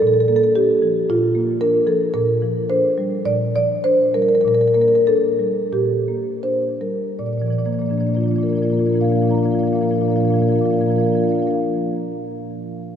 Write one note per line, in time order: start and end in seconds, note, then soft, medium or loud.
0.00 1.04 A#2 soft
0.00 0.07 A4 medium
0.07 0.14 A4 medium
0.14 0.21 A4 medium
0.21 0.28 A4 medium
0.28 0.71 A#3 soft
0.28 0.36 A4 medium
0.36 0.43 A4 medium
0.43 0.51 A4 medium
0.55 0.98 D4 soft
0.55 1.06 G4 medium
0.82 1.24 F3 soft
1.09 2.11 A#2 soft
1.09 1.59 F4 medium
1.35 1.76 A#3 soft
1.61 2.04 D4 soft
1.61 1.86 A#4 medium
1.87 2.14 F3 soft
1.87 2.13 A4 medium
2.14 3.22 A#2 soft
2.14 2.67 A#4 medium
2.42 2.86 F3 soft
2.70 3.14 D4 soft
2.70 3.23 C5 medium
2.98 3.43 G3 soft
3.26 4.40 A#2 soft
3.26 3.53 D5 medium
3.55 4.02 F3 soft
3.55 3.83 D5 medium
3.84 4.32 D4 soft
3.84 4.12 C5 medium
4.14 4.44 G3 soft
4.14 4.22 A#4 medium
4.22 4.29 A#4 soft
4.29 4.35 A#4 medium
4.35 4.41 A#4 medium
4.41 5.69 A#2 soft
4.41 4.48 A#4 medium
4.48 4.54 A#4 soft
4.54 4.61 A#4 medium
4.61 4.68 A#4 medium
4.68 4.74 A#4 medium
4.74 5.26 A#3 soft
4.74 4.82 A#4 soft
4.82 4.88 A#4 medium
4.88 4.95 A#4 medium
4.95 5.04 A#4 medium
5.07 5.59 D4 soft
5.07 5.70 A4 medium
5.39 5.93 G3 soft
5.73 7.14 A#2 soft
5.73 6.40 G4 medium
6.08 6.66 A#3 soft
6.43 7.04 D4 soft
6.43 6.79 C5 medium
6.81 7.18 G3 soft
6.81 7.17 A#4 soft
7.19 7.29 A#2 soft
7.19 7.26 D5 soft
7.26 7.38 A#2 soft
7.26 7.33 D5 soft
7.33 7.39 D5 soft
7.38 7.48 A#2 soft
7.38 7.50 F3 soft
7.38 7.46 D5 soft
7.46 7.58 A#2 soft
7.46 7.52 D5 soft
7.50 7.59 F3 soft
7.50 7.59 D5 soft
7.58 7.69 A#2 soft
7.58 7.66 F3 soft
7.58 7.65 D5 soft
7.65 7.79 A#2 soft
7.65 7.74 F3 soft
7.65 7.73 A#3 soft
7.65 7.73 D5 soft
7.73 7.82 F3 soft
7.73 7.81 A#3 soft
7.73 7.79 D5 soft
7.79 7.89 A#2 soft
7.79 7.91 F3 soft
7.79 7.89 A#3 soft
7.79 7.86 D5 soft
7.86 7.98 A#2 soft
7.86 7.98 A#3 soft
7.86 7.97 D4 soft
7.86 7.93 D5 soft
7.91 8.01 F3 soft
7.91 8.00 D5 soft
7.97 8.09 A#2 soft
7.97 8.09 F3 soft
7.97 8.06 A#3 soft
7.97 8.04 D4 soft
7.97 8.07 D5 soft
8.04 8.15 A#3 soft
8.04 8.12 D4 soft
8.04 8.14 D5 soft
8.09 8.19 A#2 soft
8.09 8.17 F3 soft
8.09 8.20 D4 soft
8.14 8.26 F3 soft
8.14 8.23 A#3 soft
8.14 8.24 F4 soft
8.14 8.21 D5 soft
8.19 8.29 A#2 soft
8.19 8.28 D4 soft
8.19 8.28 D5 soft
8.23 8.36 F3 soft
8.23 8.31 A#3 soft
8.23 8.31 F4 soft
8.28 8.38 A#2 soft
8.28 8.40 A#3 soft
8.28 8.35 D4 soft
8.28 8.38 F4 soft
8.28 8.36 D5 soft
8.35 8.49 A#2 soft
8.35 8.44 F3 soft
8.35 8.43 D4 soft
8.35 8.47 F4 soft
8.35 8.42 D5 soft
8.40 8.49 A#3 soft
8.40 8.51 D4 soft
8.40 8.50 A#4 soft
8.40 8.49 D5 soft
8.44 8.53 F3 soft
8.44 8.55 F4 soft
8.49 8.59 A#2 soft
8.49 8.62 F3 soft
8.49 8.58 A#3 soft
8.49 8.59 D4 soft
8.49 8.59 A#4 soft
8.49 8.57 D5 soft
8.55 8.70 A#2 soft
8.55 8.65 A#3 soft
8.55 8.66 D4 soft
8.55 8.63 F4 soft
8.55 8.67 A#4 soft
8.55 8.63 D5 soft
8.62 8.70 F3 soft
8.62 8.72 A#3 soft
8.62 8.73 D4 soft
8.62 8.69 F4 soft
8.62 8.70 D5 soft
8.67 8.81 A#2 soft
8.67 8.79 F3 soft
8.67 8.77 F4 soft
8.67 8.74 A#4 soft
8.72 8.80 A#3 soft
8.72 8.81 D4 soft
8.72 8.81 A#4 soft
8.72 8.79 D5 soft
8.77 8.92 A#2 soft
8.77 8.87 F3 soft
8.77 8.87 A#3 soft
8.77 8.88 D4 soft
8.77 8.86 F4 soft
8.77 8.86 D5 soft
8.81 8.90 A#4 soft
8.86 8.95 F3 soft
8.86 8.94 A#3 soft
8.86 8.95 D4 soft
8.86 8.92 F4 soft
8.86 8.93 D5 soft
8.90 9.00 A#2 soft
8.90 9.01 F4 soft
8.90 8.97 A#4 soft
8.90 9.01 D5 soft
8.94 9.04 F3 soft
8.94 9.02 A#3 soft
8.94 9.02 D4 soft
8.94 9.05 A#4 soft
9.00 9.11 A#2 soft
9.00 9.12 F3 soft
9.00 9.10 A#3 soft
9.00 9.11 D4 soft
9.00 9.08 F4 soft
9.00 9.08 D5 soft
9.00 9.09 F5 soft
9.05 9.15 F4 soft
9.05 9.12 A#4 soft
9.05 9.15 D5 soft
9.09 9.23 A#2 soft
9.09 9.22 F3 soft
9.09 9.17 A#3 soft
9.09 9.19 D4 soft
9.09 9.19 A#4 soft
9.09 9.16 F5 soft
9.15 9.25 A#3 soft
9.15 9.23 F4 soft
9.15 9.22 D5 soft
9.15 9.22 F5 soft
9.19 9.33 A#2 soft
9.19 9.30 F3 soft
9.19 9.27 D4 soft
9.19 9.31 F4 soft
9.19 9.28 A#4 soft
9.19 9.30 D5 soft
9.19 9.29 F5 soft
9.25 9.35 A#3 soft
9.25 9.35 D4 soft
9.25 9.35 A#4 soft
9.25 9.36 F5 soft
9.30 9.43 A#2 soft
9.30 9.38 F3 soft
9.30 9.38 F4 soft
9.30 9.37 D5 soft
9.30 11.58 A#5 soft
9.35 9.46 F3 soft
9.35 9.43 A#3 soft
9.35 9.43 D4 soft
9.35 9.45 F4 soft
9.35 9.43 A#4 soft
9.35 9.44 D5 soft
9.35 9.43 F5 soft
9.43 9.54 A#2 soft
9.43 9.55 F3 soft
9.43 9.51 A#3 soft
9.43 9.51 D4 soft
9.43 9.53 F4 soft
9.43 9.51 A#4 soft
9.43 9.52 D5 soft
9.43 9.50 F5 soft
9.50 9.63 A#2 soft
9.50 9.59 A#3 soft
9.50 9.59 D4 soft
9.50 9.61 F4 soft
9.50 9.59 A#4 soft
9.50 9.59 D5 soft
9.50 9.58 F5 soft
9.55 9.63 F3 soft
9.55 9.67 D4 soft
9.55 9.65 F5 soft
9.59 9.73 A#2 soft
9.59 9.67 A#3 soft
9.59 9.68 F4 soft
9.59 9.67 A#4 soft
9.59 9.66 D5 soft
9.63 9.73 F3 soft
9.63 9.76 A#3 soft
9.63 9.75 D4 soft
9.63 9.76 A#4 soft
9.63 9.74 D5 soft
9.63 9.72 F5 soft
9.68 9.77 F4 soft
9.68 9.79 F5 soft
9.73 9.83 A#2 soft
9.73 9.81 F3 soft
9.73 9.83 A#3 soft
9.73 9.82 D4 soft
9.73 9.84 F4 soft
9.73 9.83 A#4 soft
9.73 9.81 D5 soft
9.79 9.91 A#2 soft
9.79 9.91 F3 soft
9.79 9.89 D4 soft
9.79 9.88 D5 soft
9.79 9.86 F5 soft
9.83 9.91 A#3 soft
9.83 9.92 F4 soft
9.83 9.90 A#4 soft
9.83 9.93 F5 soft
9.88 10.01 A#2 soft
9.88 9.99 F3 soft
9.88 9.98 A#3 soft
9.88 9.97 D4 soft
9.88 9.97 A#4 soft
9.88 9.95 D5 soft
9.92 10.01 F4 soft
9.92 10.03 D5 soft
9.92 10.01 F5 soft
9.97 10.08 F3 soft
9.97 10.06 A#3 soft
9.97 10.05 D4 soft
9.97 10.09 F4 soft
9.97 10.05 A#4 soft
9.97 10.08 F5 soft
10.01 10.10 A#2 soft
10.01 10.13 D4 soft
10.01 10.11 A#4 soft
10.01 10.09 D5 soft
10.06 10.19 A#2 soft
10.06 10.16 F3 soft
10.06 10.14 A#3 soft
10.06 10.16 F4 soft
10.06 10.17 D5 soft
10.06 10.16 F5 soft
10.11 10.22 A#3 soft
10.11 10.20 D4 soft
10.11 10.20 A#4 soft
10.16 10.30 A#2 soft
10.16 10.25 F3 soft
10.16 10.24 F4 soft
10.16 10.25 D5 soft
10.16 10.22 F5 soft
10.20 10.31 A#3 soft
10.20 10.29 D4 soft
10.20 10.28 A#4 soft
10.20 10.29 F5 soft
10.24 10.34 F3 soft
10.24 10.33 F4 soft
10.24 10.36 A#4 soft
10.24 10.31 D5 soft
10.29 10.42 A#2 soft
10.29 10.38 A#3 soft
10.29 10.37 D4 soft
10.29 10.39 D5 soft
10.29 10.36 F5 soft
10.33 10.42 F3 soft
10.33 10.41 F4 soft
10.33 10.43 A#4 soft
10.33 10.43 F5 soft
10.37 10.47 A#3 soft
10.37 10.45 D4 soft
10.37 10.48 F4 soft
10.37 10.47 D5 soft
10.42 10.52 A#2 soft
10.42 10.49 F3 soft
10.42 10.52 D4 soft
10.42 10.52 A#4 soft
10.42 10.51 F5 soft
10.47 10.58 F3 soft
10.47 10.56 A#3 soft
10.47 10.56 F4 soft
10.47 10.54 D5 soft
10.47 10.58 F5 soft
10.52 10.61 A#2 soft
10.52 10.64 A#3 soft
10.52 10.60 D4 soft
10.52 10.64 F4 soft
10.52 10.59 A#4 soft
10.52 10.62 D5 soft
10.58 10.71 A#2 soft
10.58 10.66 F3 soft
10.58 10.67 D4 soft
10.58 10.66 A#4 soft
10.58 10.65 F5 soft
10.62 10.71 A#3 soft
10.62 10.73 F4 soft
10.62 10.70 D5 soft
10.62 10.72 F5 soft
10.66 10.73 F3 soft
10.66 10.76 D4 soft
10.66 10.74 A#4 soft
10.70 10.81 A#2 soft
10.70 10.81 F3 soft
10.70 10.79 A#3 soft
10.70 10.81 F4 soft
10.70 10.77 D5 soft
10.70 10.79 F5 soft
10.74 10.84 D4 soft
10.74 10.81 A#4 soft
10.74 10.85 D5 soft
10.79 10.91 A#2 soft
10.79 10.90 F3 soft
10.79 10.86 A#3 soft
10.79 10.89 F4 soft
10.79 10.88 A#4 soft
10.79 10.86 F5 soft
10.84 10.94 A#3 soft
10.84 10.91 D4 soft
10.84 10.92 D5 soft
10.84 10.93 F5 soft
10.88 11.05 A#2 soft
10.88 10.98 F3 soft
10.88 10.98 D4 soft
10.88 10.96 F4 soft
10.88 10.97 A#4 soft
10.88 10.99 D5 soft
10.93 11.01 A#3 soft
10.93 11.05 F4 soft
10.93 11.03 A#4 soft
10.93 11.00 F5 soft
10.98 11.06 F3 soft
10.98 11.09 A#3 soft
10.98 11.07 D4 soft
10.98 11.07 D5 soft
10.98 11.07 F5 soft
11.03 11.15 F3 soft
11.03 11.14 D4 soft
11.03 11.12 F4 soft
11.03 11.11 A#4 soft
11.03 11.14 D5 soft
11.03 11.14 F5 soft
11.09 11.16 A#3 soft
11.09 11.19 F4 soft
11.09 11.17 A#4 soft
11.14 11.23 F3 soft
11.14 11.24 A#3 soft
11.14 11.22 D4 soft
11.14 11.24 A#4 soft
11.14 11.21 D5 soft
11.14 11.21 F5 soft
11.19 11.28 F3 soft
11.19 11.31 D4 soft
11.19 11.27 F4 soft
11.19 11.29 D5 soft
11.19 11.28 F5 soft
11.24 11.32 A#3 soft
11.24 11.35 F4 soft
11.24 11.31 A#4 soft
11.28 11.40 A#3 soft
11.28 11.38 D4 soft
11.28 11.39 A#4 soft
11.28 11.36 D5 soft
11.28 11.35 F5 soft
11.35 11.46 D4 soft
11.35 11.42 F4 soft
11.35 11.43 D5 soft
11.35 11.41 F5 soft
11.39 11.47 A#3 soft
11.39 11.51 F4 soft
11.39 11.47 A#4 soft
11.39 11.50 D5 soft
11.39 11.48 F5 soft
11.46 11.51 A#3 soft
11.46 11.54 D4 soft
11.46 11.57 A#4 soft
11.46 11.55 F5 soft
11.50 11.57 D4 soft
11.50 11.57 F4 soft
11.50 11.58 D5 soft
11.55 11.58 F5 soft